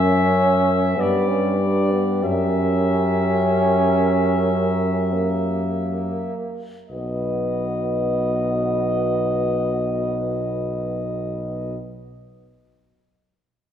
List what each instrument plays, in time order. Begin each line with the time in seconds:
Already playing: tuba F#2, trombone C#4, euphonium A#4, french horn section C#5, flugelhorn E5
0.97 tuba G2, trombone B3, euphonium G4, french horn section B4, flugelhorn D5
1.28 trombone C#4
1.60 trombone D4
1.92 trombone B3
2.23 tuba F#2, trombone C#4, french horn section A#4, flugelhorn E5
5.14 trombone A#3
6.89 tuba B1, trombone B3, euphonium F#4, french horn section B4, flugelhorn D#5